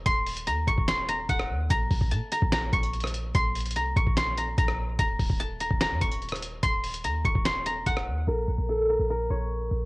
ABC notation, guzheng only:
X:1
M:4/4
L:1/8
Q:1/4=146
K:Bbm
V:1 name="Guzheng"
c'2 b d' c' b g z | b2 =a b b d'3 | c'2 b d' c' b b z | b2 =a b b d'3 |
c'2 b d' c' b g z | B2 =A B B d3 |]